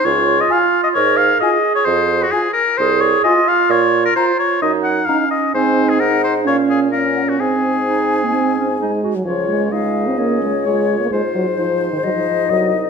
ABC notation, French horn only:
X:1
M:4/4
L:1/16
Q:1/4=130
K:Db
V:1 name="French horn" clef=bass
z4 F4 z4 F4 | z4 F4 z4 F4 | z4 F4 z4 E4 | E8 D4 D4 |
C12 A,3 G, | F,2 A,2 A,3 C B,2 A,2 A,3 B, | A,2 G,2 F,3 E, G, F,3 G,2 z2 |]